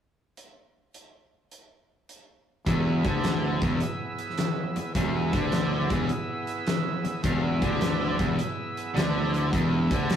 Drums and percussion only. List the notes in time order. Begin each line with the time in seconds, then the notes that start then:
0.37 closed hi-hat
0.94 closed hi-hat
1.51 closed hi-hat
2.09 closed hi-hat
2.67 kick, closed hi-hat
3.05 kick, closed hi-hat
3.24 snare, closed hi-hat
3.62 kick, closed hi-hat
3.80 closed hi-hat
4.19 closed hi-hat
4.30 snare
4.38 snare, closed hi-hat
4.76 closed hi-hat
4.95 kick, closed hi-hat
5.33 kick, closed hi-hat
5.52 snare, closed hi-hat
5.90 kick, closed hi-hat
6.09 closed hi-hat
6.47 closed hi-hat
6.67 snare, closed hi-hat
7.05 closed hi-hat
7.24 kick, closed hi-hat
7.62 kick, closed hi-hat
7.81 snare, closed hi-hat
8.19 kick, closed hi-hat
8.39 closed hi-hat
8.77 closed hi-hat
8.97 snare, closed hi-hat
9.34 closed hi-hat
9.53 kick, closed hi-hat
9.91 kick, closed hi-hat
10.10 snare, closed hi-hat